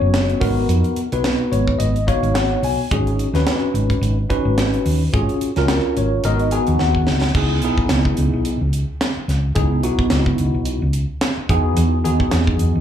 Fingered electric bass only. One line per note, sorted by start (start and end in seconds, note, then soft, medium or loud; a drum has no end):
0.01 0.33 F#1 medium
0.41 0.63 G#1 medium
0.69 0.81 F2 medium
0.97 muted fingered electric bass stroke soft
1.12 1.34 B1 medium
1.52 1.74 G#1 medium
1.79 2.14 G#1 medium
2.23 2.55 G#1 medium
2.63 2.75 B1 medium
2.91 3.25 G#1 medium
3.33 3.44 D#2 medium
3.62 muted fingered electric bass stroke soft
3.74 3.96 G#1 medium
4.01 4.24 G#1 medium
4.45 4.77 G#1 medium
4.86 5.08 D#2 medium
5.14 5.26 G#1 medium
5.41 muted fingered electric bass stroke soft
5.57 5.78 C#2 medium
5.97 6.19 G#1 medium
6.24 6.58 G#1 medium
6.68 6.78 D#2 medium
6.80 7.05 D#2 medium
7.08 7.33 C#2 medium
7.35 7.63 C#2 medium
7.63 7.75 B1 medium
7.90 8.12 C#2 medium
8.18 8.30 C#2 medium
8.33 8.55 B1 medium
8.61 8.83 C#2 medium
9.17 muted fingered electric bass stroke soft
9.28 9.50 C#2 medium
9.56 9.84 C#2 loud
9.84 9.96 B1 loud
10.11 10.33 C#2 medium
10.40 10.52 C#2 medium
10.54 10.76 B1 medium
10.82 11.04 C#2 medium
11.37 muted fingered electric bass stroke soft
11.49 11.71 E2 medium
11.77 12.04 E2 medium
12.04 12.17 D#2 medium
12.32 12.54 E2 medium
12.61 12.73 E2 medium
12.75 12.81 D#2 medium